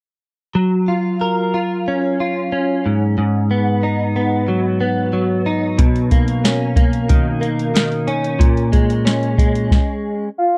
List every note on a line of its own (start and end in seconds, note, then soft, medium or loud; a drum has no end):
0.55 3.21 F#3 medium
0.88 1.53 F4 soft
1.21 3.21 A#4 medium
1.54 2.19 F4 soft
1.88 2.52 C#4 medium
2.20 2.92 F4 soft
2.52 3.50 C#4 medium
2.86 3.17 G#2 medium
3.18 5.79 G#2 medium
3.51 4.15 B3 medium
3.83 5.46 D#4 medium
4.16 4.80 B3 medium
4.48 5.13 F#3 medium
4.81 6.11 B3 medium
5.13 7.09 F#3 medium
5.46 6.44 D#4 medium
5.78 8.39 B2 medium
5.78 kick medium
5.78 closed hi-hat medium
5.96 closed hi-hat soft
6.11 6.76 A#3 soft
6.11 kick medium
6.11 closed hi-hat medium
6.28 closed hi-hat soft
6.44 8.07 C#4 medium
6.44 snare medium
6.44 closed hi-hat medium
6.76 7.41 A#3 medium
6.76 kick medium
6.76 closed hi-hat medium
6.93 closed hi-hat soft
7.09 7.74 D#3 medium
7.09 kick medium
7.09 closed hi-hat medium
7.41 8.72 A#3 soft
7.41 closed hi-hat medium
7.59 closed hi-hat soft
7.75 8.47 D#3 medium
7.75 snare loud
7.75 closed hi-hat medium
7.92 closed hi-hat soft
8.08 9.05 C#4 medium
8.08 closed hi-hat soft
8.24 closed hi-hat soft
8.39 9.78 A#2 medium
8.39 kick medium
8.39 closed hi-hat medium
8.57 closed hi-hat soft
8.72 9.38 G#3 medium
8.72 kick medium
8.72 closed hi-hat medium
8.90 closed hi-hat soft
9.05 10.28 C#4 medium
9.05 snare medium
9.05 closed hi-hat medium
9.23 closed hi-hat soft
9.38 10.28 G#3 medium
9.38 kick medium
9.38 closed hi-hat medium
9.55 closed hi-hat soft
9.71 kick medium
9.71 snare medium
10.38 10.58 F5 loud